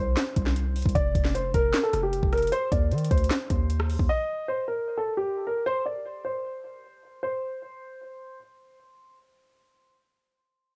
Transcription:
Already playing: 808-style bass C2, grand piano C5
0.17 snare, clap, closed hi-hat
0.36 808-style bass C2, kick, closed hi-hat
0.46 snare
0.56 closed hi-hat
0.76 closed hi-hat, open hi-hat
0.82 808-style bass C2, kick, closed hi-hat
0.89 closed hi-hat
0.95 808-style bass F1, grand piano D5, kick, closed hi-hat
1.15 808-style bass F1, kick, closed hi-hat
1.25 snare
1.35 grand piano C5, closed hi-hat
1.54 808-style bass F1, grand piano A#4, kick, closed hi-hat
1.74 snare, clap, closed hi-hat
1.83 grand piano A4
1.93 808-style bass F1, cross-stick, closed hi-hat
2.03 grand piano G4
2.13 closed hi-hat
2.23 808-style bass F1, kick
2.33 grand piano A#4, cross-stick, closed hi-hat
2.38 closed hi-hat
2.42 closed hi-hat
2.47 closed hi-hat
2.52 grand piano C5, closed hi-hat
2.72 808-style bass D#2, grand piano D5, kick, closed hi-hat
2.91 808-style bass D#3, closed hi-hat
2.98 closed hi-hat
3.04 closed hi-hat
3.11 808-style bass D2, grand piano C5, kick, closed hi-hat
3.18 closed hi-hat
3.24 closed hi-hat
3.31 snare, clap, closed hi-hat
3.50 808-style bass D#2, kick, closed hi-hat
3.70 closed hi-hat
3.80 cross-stick
3.90 open hi-hat
3.99 808-style bass D#2, kick
4.09 grand piano D#5
4.48 grand piano C5
4.68 grand piano A#4
4.98 grand piano A4
5.17 grand piano G4
5.47 grand piano A#4
5.66 grand piano C5
5.86 grand piano D5
6.25 grand piano C5
7.23 grand piano C5

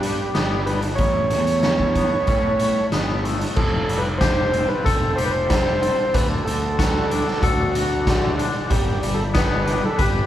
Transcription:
Already playing: picked electric bass G2, clean electric guitar B3 D4, string machine D5 G5 B5
0.01 clean electric guitar G3, transistor combo organ G4, closed hi-hat
0.34 picked electric bass G1, clean electric guitar B3, snare, closed hi-hat
0.66 clean electric guitar G3, transistor combo organ B4, closed hi-hat
0.82 closed hi-hat
0.95 picked electric bass A1, clean electric guitar A2, transistor combo organ C#5, kick, closed hi-hat
1.00 string machine C#5 A5 B5
1.30 picked electric bass E2, clean electric guitar A3, closed hi-hat
1.47 closed hi-hat
1.63 clean electric guitar C#4, snare, closed hi-hat
1.80 kick
1.95 clean electric guitar B3, kick, closed hi-hat
2.27 picked electric bass A2, clean electric guitar C#4, kick, closed hi-hat
2.59 clean electric guitar A3, closed hi-hat
2.92 picked electric bass G1, clean electric guitar B3, snare, closed hi-hat
3.25 clean electric guitar A3, closed hi-hat
3.41 closed hi-hat
3.56 picked electric bass F1, clean electric guitar F3, transistor combo organ A4, string machine F5 G5 A5, kick, crash
3.88 picked electric bass F1, clean electric guitar G3, closed hi-hat
3.98 transistor combo organ B4
4.18 clean electric guitar G4, transistor combo organ C5, kick, snare, closed hi-hat
4.52 clean electric guitar C4, closed hi-hat
4.68 transistor combo organ B4
4.85 picked electric bass F1, transistor combo organ A4, clean electric guitar A4, kick, closed hi-hat
5.16 clean electric guitar G4, transistor combo organ C5, closed hi-hat
5.26 transistor combo organ B4
5.31 transistor combo organ C5
5.50 clean electric guitar G3, kick, snare, closed hi-hat
5.82 clean electric guitar C4, closed hi-hat
6.14 picked electric bass D2, clean electric guitar D3, transistor combo organ B4, string machine D5 F#5, kick, closed hi-hat
6.45 picked electric bass D2, clean electric guitar D3, transistor combo organ A4, closed hi-hat
6.79 clean electric guitar F#4, kick, snare, closed hi-hat
7.10 clean electric guitar D4, closed hi-hat
7.28 snare
7.41 picked electric bass D2, transistor combo organ F#4, clean electric guitar A4, kick, closed hi-hat
7.75 clean electric guitar F#4, closed hi-hat
8.07 clean electric guitar D3, kick, snare, closed hi-hat
8.38 clean electric guitar D4, closed hi-hat
8.70 picked electric bass G1, clean electric guitar G3, transistor combo organ G4, string machine G5 B5, kick, closed hi-hat, low conga
9.02 picked electric bass G1, clean electric guitar G3, closed hi-hat
9.14 transistor combo organ A4
9.34 clean electric guitar B3, transistor combo organ B4, kick, snare, closed hi-hat
9.66 clean electric guitar D4, closed hi-hat, low conga
9.82 transistor combo organ A4, high conga
9.98 picked electric bass G1, transistor combo organ G4, clean electric guitar B4, kick, closed hi-hat

